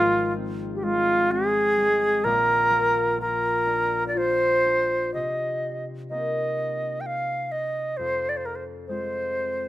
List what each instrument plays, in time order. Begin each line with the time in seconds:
Already playing: harp G#1 G#2 F3 A#3 D#4, flute F4
0.37 harp C4
0.75 flute G4
0.83 harp G#3, flute F4
1.31 harp C4, flute G#4
1.78 harp G#3
2.24 harp A#1 A#2, flute A#4
2.70 harp F3
3.18 harp F4, flute A#4
3.66 harp D4
4.08 flute D5
4.15 harp F4, flute C5
4.65 harp D4
5.14 harp C3, flute D#5
6.10 harp A#3 C4 D#4, flute D#5
7.01 flute G5
7.06 flute F5
7.52 flute D#5
7.97 harp F2, flute C5
8.29 flute D5
8.37 flute C5
8.46 flute A#4
8.55 flute C5
8.88 harp G#3 C4 F4, flute C5